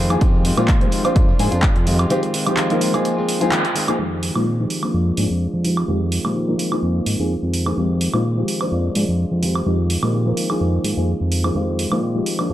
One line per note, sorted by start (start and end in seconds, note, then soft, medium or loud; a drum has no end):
0.00 0.17 F2 loud
0.00 0.20 D#3 medium
0.00 0.20 G#3 medium
0.00 0.21 C4 medium
0.00 0.22 F4 medium
0.10 0.19 F3 medium
0.10 0.19 A#3 medium
0.10 0.19 C4 medium
0.10 0.19 D#4 medium
0.10 0.19 G#4 loud
0.10 closed hi-hat medium
0.10 high woodblock medium
0.21 0.53 F2 loud
0.21 0.43 D#3 medium
0.21 0.54 F3 medium
0.21 0.55 G#3 medium
0.21 0.44 G#3 medium
0.21 0.55 C4 medium
0.21 0.45 C4 loud
0.21 0.55 D#4 medium
0.21 0.46 F4 medium
0.21 kick loud
0.21 closed hi-hat medium
0.21 tambourine medium
0.34 tambourine soft
0.44 0.57 D#3 medium
0.44 0.58 G#3 medium
0.44 0.57 C4 medium
0.44 0.56 F4 medium
0.44 open hi-hat loud
0.44 tambourine medium
0.57 0.88 A#2 loud
0.57 0.64 F3 medium
0.57 0.64 G#3 medium
0.57 0.68 G#3 medium
0.57 0.64 C4 medium
0.57 0.68 C4 medium
0.57 0.64 D#4 medium
0.57 0.68 F4 medium
0.57 0.64 F4 loud
0.57 closed hi-hat medium
0.57 tambourine soft
0.57 high woodblock medium
0.68 0.90 D#3 medium
0.68 0.91 G#3 medium
0.68 0.92 C4 medium
0.68 0.93 F4 loud
0.68 kick loud
0.68 clap loud
0.68 closed hi-hat medium
0.81 1.02 F3 medium
0.81 1.02 G#3 medium
0.81 1.02 C4 medium
0.81 1.02 D#4 medium
0.81 1.02 G4 medium
0.81 closed hi-hat soft
0.81 tambourine soft
0.91 1.04 D#3 medium
0.91 1.05 G#3 medium
0.91 1.04 C4 medium
0.91 1.03 F4 medium
0.91 open hi-hat loud
0.91 tambourine medium
1.04 1.37 F3 medium
1.04 1.14 G#3 soft
1.04 1.37 A#3 medium
1.04 1.37 C4 medium
1.04 1.16 C4 medium
1.04 1.37 D4 medium
1.04 1.15 F4 medium
1.04 1.37 C5 medium
1.04 closed hi-hat medium
1.04 tambourine soft
1.04 high woodblock medium
1.15 1.34 F2 loud
1.15 1.28 G#3 medium
1.15 1.29 D4 medium
1.15 kick loud
1.15 closed hi-hat medium
1.15 tambourine medium
1.27 1.53 D4 medium
1.27 1.50 F4 medium
1.27 tambourine soft
1.39 1.49 G#2 loud
1.39 1.47 F3 medium
1.39 1.47 A#3 medium
1.39 1.47 C4 medium
1.39 1.47 D4 medium
1.39 1.47 G#4 loud
1.39 open hi-hat loud
1.39 tambourine medium
1.51 1.70 F2 medium
1.51 1.62 D4 medium
1.51 1.63 F4 medium
1.51 closed hi-hat medium
1.51 tambourine soft
1.62 1.75 G#3 medium
1.62 kick loud
1.62 clap loud
1.62 closed hi-hat medium
1.75 2.06 F2 loud
1.75 1.87 D4 medium
1.75 1.86 F4 medium
1.75 closed hi-hat soft
1.75 tambourine soft
1.86 1.99 D#3 medium
1.86 2.08 F3 medium
1.86 2.08 G#3 medium
1.86 2.00 G#3 medium
1.86 2.08 C4 medium
1.86 1.99 C4 medium
1.86 2.08 D#4 medium
1.86 1.97 F4 medium
1.86 2.08 G4 medium
1.86 open hi-hat loud
1.86 tambourine medium
1.98 2.09 G#3 soft
1.98 2.10 C4 soft
1.98 2.10 F4 medium
1.98 closed hi-hat medium
1.98 tambourine soft
1.98 high woodblock medium
2.10 2.32 D#3 medium
2.10 2.18 F3 loud
2.10 2.18 G#3 medium
2.10 2.33 G#3 medium
2.10 2.18 C4 medium
2.10 2.34 C4 loud
2.10 2.18 D#4 medium
2.10 2.35 F4 loud
2.10 2.18 G4 loud
2.10 closed hi-hat medium
2.10 tambourine soft
2.23 closed hi-hat soft
2.23 tambourine soft
2.33 2.46 D#3 medium
2.33 2.47 G#3 medium
2.33 2.46 C4 medium
2.33 2.45 F4 medium
2.33 open hi-hat loud
2.33 tambourine medium
2.46 2.67 F3 medium
2.46 2.67 G#3 medium
2.46 2.57 G#3 medium
2.46 2.67 C4 medium
2.46 2.57 C4 medium
2.46 2.68 D#4 medium
2.46 2.57 F4 medium
2.46 2.68 G4 medium
2.46 closed hi-hat medium
2.46 tambourine soft
2.46 high woodblock medium
2.57 2.79 D#3 medium
2.57 2.81 G#3 medium
2.57 2.81 C4 loud
2.57 2.82 F4 loud
2.57 clap loud
2.57 closed hi-hat medium
2.57 tambourine medium
2.70 2.91 F3 medium
2.70 2.91 A#3 medium
2.70 2.91 C4 medium
2.70 2.91 D#4 medium
2.70 2.91 A#4 loud
2.70 closed hi-hat soft
2.70 tambourine soft
2.81 2.94 D#3 medium
2.81 2.94 G#3 medium
2.81 2.94 C4 medium
2.81 2.92 F4 medium
2.81 open hi-hat loud
2.81 tambourine medium
2.93 3.38 F3 loud
2.93 3.18 G#3 soft
2.93 3.38 A#3 medium
2.93 3.38 C4 medium
2.93 3.17 C4 medium
2.93 3.38 D#4 medium
2.93 3.16 F4 medium
2.93 3.38 G#4 loud
2.93 closed hi-hat medium
2.93 tambourine soft
2.93 high woodblock medium
3.05 closed hi-hat medium
3.05 tambourine soft
3.17 3.42 G#3 medium
3.17 3.41 C4 medium
3.17 3.39 F4 medium
3.17 tambourine soft
3.29 open hi-hat loud
3.29 tambourine medium
3.41 3.51 F3 medium
3.41 3.51 G#3 medium
3.41 3.51 A#3 medium
3.41 3.51 C4 medium
3.41 3.52 C4 medium
3.41 3.51 D#4 medium
3.41 3.52 F4 medium
3.41 3.52 G#4 loud
3.41 closed hi-hat medium
3.41 tambourine soft
3.52 3.65 D#3 medium
3.52 3.65 G#3 medium
3.52 3.65 C4 loud
3.52 3.63 F4 loud
3.52 clap loud
3.52 closed hi-hat medium
3.52 tambourine soft
3.64 3.75 G#3 medium
3.64 3.76 C4 medium
3.64 3.76 F4 medium
3.64 closed hi-hat soft
3.64 tambourine soft
3.75 3.88 D#3 medium
3.75 3.89 G#3 medium
3.75 3.88 C4 medium
3.75 3.87 F4 medium
3.75 open hi-hat loud
3.75 tambourine medium
3.88 3.97 F3 medium
3.88 3.98 G#3 soft
3.88 3.97 A#3 medium
3.88 3.97 C4 medium
3.88 3.99 C4 soft
3.88 3.97 D#4 medium
3.88 3.99 F4 medium
3.88 3.97 G#4 loud
3.88 closed hi-hat medium
3.88 tambourine soft
3.88 high woodblock medium
3.99 4.31 F2 medium
3.99 4.45 D#3 medium
3.99 4.33 F3 medium
3.99 4.33 G#3 medium
3.99 4.47 G#3 medium
3.99 4.47 C4 medium
3.99 4.48 F4 medium
4.23 open hi-hat loud
4.35 4.66 A#2 medium
4.35 4.42 F3 medium
4.35 4.42 G#3 medium
4.35 4.42 C4 medium
4.35 4.42 D#4 medium
4.35 4.42 F4 medium
4.35 high woodblock medium
4.46 4.93 D#3 medium
4.46 4.94 G#3 medium
4.46 4.94 C4 medium
4.46 4.95 F4 medium
4.59 4.80 F3 medium
4.59 4.80 G#3 medium
4.59 4.80 C4 medium
4.59 4.80 D#4 medium
4.59 4.80 G4 medium
4.70 open hi-hat loud
4.83 5.15 F3 medium
4.83 5.15 A#3 medium
4.83 5.15 C4 medium
4.83 5.15 D4 medium
4.83 5.15 C5 medium
4.83 high woodblock medium
4.93 5.12 F2 medium
4.93 5.87 F3 medium
4.93 5.66 G#3 medium
4.93 5.65 D4 medium
4.93 5.64 F4 medium
5.17 5.27 G#2 medium
5.17 5.25 F3 medium
5.17 5.25 A#3 medium
5.17 5.25 C4 medium
5.17 5.25 D4 medium
5.17 5.25 G#4 loud
5.17 open hi-hat loud
5.30 5.48 F2 medium
5.54 5.84 F2 loud
5.64 5.86 F3 medium
5.64 5.86 G#3 medium
5.64 5.87 G#3 soft
5.64 5.86 C4 medium
5.64 5.88 C4 medium
5.64 5.86 D#4 medium
5.64 5.88 F4 medium
5.64 5.86 G4 medium
5.64 open hi-hat loud
5.77 high woodblock medium
5.88 6.20 F2 medium
5.88 6.34 D#3 medium
5.88 5.95 F3 medium
5.88 5.96 G#3 medium
5.88 6.35 G#3 medium
5.88 5.96 C4 medium
5.88 6.36 C4 medium
5.88 5.96 D#4 medium
5.88 6.37 F4 medium
5.88 5.96 G4 loud
6.12 open hi-hat loud
6.24 6.55 A#2 medium
6.24 6.45 F3 medium
6.24 6.45 G#3 medium
6.24 6.45 C4 medium
6.24 6.45 D#4 medium
6.24 6.46 G4 medium
6.24 high woodblock medium
6.35 6.59 D#3 medium
6.35 6.59 G#3 medium
6.35 6.58 C4 medium
6.35 6.57 F4 medium
6.48 6.69 F3 medium
6.48 6.69 A#3 medium
6.48 6.69 C4 medium
6.48 6.69 D#4 medium
6.48 6.69 A#4 medium
6.58 7.77 G#3 medium
6.58 7.77 C4 medium
6.58 7.78 F4 medium
6.58 open hi-hat loud
6.62 7.75 D#3 medium
6.72 7.16 F3 medium
6.72 7.16 A#3 medium
6.72 7.16 C4 medium
6.72 7.16 D#4 medium
6.72 7.16 G#4 loud
6.72 high woodblock medium
6.83 7.01 F2 medium
7.06 7.16 G#2 medium
7.06 open hi-hat loud
7.19 7.36 F2 medium
7.19 7.29 F3 medium
7.19 7.29 A#3 medium
7.19 7.29 C4 medium
7.19 7.29 D#4 medium
7.19 7.29 G#4 medium
7.43 7.73 F2 loud
7.54 open hi-hat loud
7.66 7.75 F3 medium
7.66 7.75 A#3 medium
7.66 7.75 C4 medium
7.66 7.75 D#4 medium
7.66 7.75 G#4 medium
7.66 high woodblock medium
7.77 8.09 F2 loud
7.77 8.23 D#3 medium
7.77 8.11 F3 medium
7.77 8.11 G#3 medium
7.77 8.24 G#3 medium
7.77 8.11 C4 medium
7.77 8.25 C4 medium
7.77 8.11 D#4 medium
7.77 8.26 F4 medium
8.01 open hi-hat loud
8.13 8.44 A#2 loud
8.13 8.20 F3 medium
8.13 8.20 G#3 medium
8.13 8.20 C4 medium
8.13 8.20 D#4 medium
8.13 8.20 F4 medium
8.13 high woodblock medium
8.24 8.71 D#3 medium
8.24 8.72 G#3 medium
8.24 8.72 C4 medium
8.24 8.73 F4 medium
8.37 8.58 F3 medium
8.37 8.58 G#3 medium
8.37 8.58 C4 medium
8.37 8.58 D#4 medium
8.37 8.58 G4 medium
8.48 open hi-hat loud
8.61 8.93 F3 medium
8.61 8.93 A#3 medium
8.61 8.93 C4 medium
8.61 8.93 D4 medium
8.61 8.93 C5 medium
8.61 high woodblock medium
8.71 8.90 F2 medium
8.71 9.44 F3 medium
8.71 9.43 G#3 medium
8.71 9.43 D4 medium
8.71 9.42 F4 loud
8.95 9.05 G#2 medium
8.95 9.03 F3 medium
8.95 9.03 A#3 medium
8.95 9.03 C4 medium
8.95 9.03 D4 medium
8.95 9.03 G#4 loud
8.95 open hi-hat loud
9.08 9.25 F2 medium
9.32 9.62 F2 loud
9.42 10.13 D#3 medium
9.42 9.64 F3 medium
9.42 9.64 G#3 medium
9.42 10.14 G#3 medium
9.42 9.64 C4 medium
9.42 10.14 C4 medium
9.42 9.64 D#4 medium
9.42 10.15 F4 medium
9.42 9.64 G4 medium
9.42 open hi-hat loud
9.55 high woodblock medium
9.66 9.98 F2 loud
9.66 9.73 F3 medium
9.66 9.73 G#3 medium
9.66 9.74 C4 medium
9.66 9.74 D#4 medium
9.66 9.74 G4 loud
9.90 open hi-hat loud
10.02 10.33 A#2 loud
10.02 10.23 F3 medium
10.02 10.23 G#3 medium
10.02 10.23 C4 medium
10.02 10.23 D#4 medium
10.02 10.23 G4 medium
10.02 high woodblock medium
10.13 10.37 D#3 medium
10.13 10.37 G#3 medium
10.13 10.37 C4 medium
10.13 10.35 F4 medium
10.26 10.47 F3 medium
10.26 10.47 A#3 medium
10.26 10.47 C4 medium
10.26 10.47 D#4 medium
10.26 10.47 A#4 medium
10.36 11.55 G#3 medium
10.36 11.55 C4 medium
10.36 11.56 F4 medium
10.36 open hi-hat loud
10.40 11.54 D#3 medium
10.50 10.94 F3 medium
10.50 10.94 A#3 medium
10.50 10.94 C4 medium
10.50 10.94 D#4 medium
10.50 10.94 G#4 loud
10.50 high woodblock medium
10.61 10.79 F2 medium
10.84 10.94 G#2 loud
10.84 open hi-hat loud
10.97 11.14 F2 medium
10.97 11.07 F3 medium
10.97 11.07 A#3 medium
10.97 11.07 C4 medium
10.97 11.07 D#4 medium
10.97 11.08 G#4 medium
11.21 11.51 F2 medium
11.32 open hi-hat loud
11.44 11.53 F3 medium
11.44 11.53 A#3 medium
11.44 11.53 C4 medium
11.44 11.53 D#4 medium
11.44 11.53 G#4 medium
11.44 high woodblock medium
11.55 11.87 F2 medium
11.55 12.01 D#3 medium
11.55 11.88 F3 medium
11.55 11.89 G#3 medium
11.55 12.03 G#3 medium
11.55 11.89 C4 medium
11.55 12.02 C4 medium
11.55 11.89 D#4 medium
11.55 12.04 F4 medium
11.55 11.89 G4 medium
11.79 open hi-hat loud
11.91 12.22 A#2 loud
11.91 11.98 F3 medium
11.91 11.98 G#3 medium
11.91 11.98 C4 medium
11.91 11.98 D#4 medium
11.91 11.98 F4 loud
11.91 high woodblock medium
12.02 12.49 D#3 medium
12.02 12.50 G#3 medium
12.02 12.50 C4 medium
12.02 12.51 F4 medium
12.15 12.36 F3 medium
12.15 12.36 G#3 medium
12.15 12.36 C4 medium
12.15 12.36 D#4 medium
12.15 12.36 G4 medium
12.26 open hi-hat loud
12.38 12.54 F3 medium
12.38 12.54 A#3 medium
12.38 12.54 C4 medium
12.38 12.54 D4 medium
12.38 12.54 C5 medium
12.38 high woodblock medium
12.49 12.54 F2 medium
12.49 12.54 F3 medium
12.49 12.54 G#3 medium